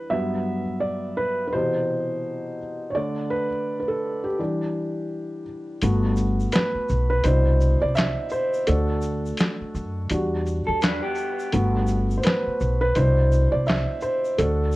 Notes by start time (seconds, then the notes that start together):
Already playing: E3 G3 D4 B4
0.10 G2 F#3 B3 E5
0.80 D5
1.17 B4
1.47 B4
1.53 B2 C3 E3 C5
2.90 C#5
2.95 D3 A3 D4 D5
3.30 B4
3.80 B4
3.88 A4
4.24 G4
4.39 E3 G3 D4
5.82 G1 A3 B3 F#4, closed hi-hat, shaker
6.16 shaker
6.40 shaker
6.52 B4, snare, clap, closed hi-hat, shaker
6.75 muted upright bass stroke
6.89 B1, shaker
7.10 B4
7.24 C2 B2 D4 E4 C5, closed hi-hat, shaker
7.61 shaker
7.82 C2 D5
7.95 E5, snare, clap, closed hi-hat, shaker
8.29 shaker
8.31 C5, shaker
8.53 shaker
8.67 D2 A3 D4 F#4 A4, closed hi-hat, shaker
9.01 shaker
9.26 shaker
9.37 snare, clap, closed hi-hat, shaker
9.61 muted upright bass stroke
9.75 F#2, shaker
10.09 E2 G3 D4 F#4, closed hi-hat, shaker
10.46 shaker
10.67 E2 A4
10.82 D4 B4, snare, clap, closed hi-hat, shaker
11.03 B3 G4
11.15 shaker
11.17 shaker
11.39 shaker
11.52 G1 A3 B3 F#4, closed hi-hat, shaker
11.87 shaker
12.11 shaker
12.18 C5
12.23 B4, snare, closed hi-hat, shaker
12.27 clap
12.47 muted upright bass stroke
12.60 B1, shaker
12.81 B4
12.95 C2 B2 D4 E4 C5, closed hi-hat, shaker
13.32 shaker
13.52 C2 D5
13.66 E5, snare, clap, closed hi-hat, shaker
14.01 C5, shaker
14.25 shaker
14.38 D2 A3 D4 F#4 A4, closed hi-hat, shaker
14.72 shaker